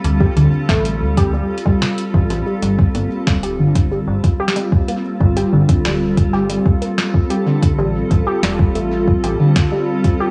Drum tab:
HH |x---x-----x---x----x----x---x---|x---x-----x---x-----x---x---x---|--x---x-----x---x---x-----x---x-|----x---x---x-----x---x-----x---|
SD |--------o-------------o---------|--------o--------------o--------|--------o-------------o---------|--------o-------------o---------|
BD |--o-----o-----o-----o-----o-----|--o-----o-----o-----o-----o-----|o-----o-----o-----o-----o-----o-|----o-----o-----o-----o-----o---|